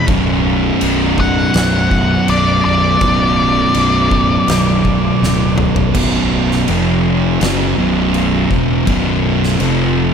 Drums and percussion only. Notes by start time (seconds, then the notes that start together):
0.08 kick, crash
0.81 crash
1.18 kick
1.54 snare, crash
1.91 kick
2.28 crash
3.01 kick, crash
3.74 crash
4.11 kick
4.48 snare, crash
4.85 kick
5.23 snare
5.58 mid tom
5.76 floor tom
5.95 kick, crash
6.51 snare
6.68 crash
7.41 snare, crash
8.14 crash
8.51 kick
8.87 kick, crash
9.44 snare
9.60 crash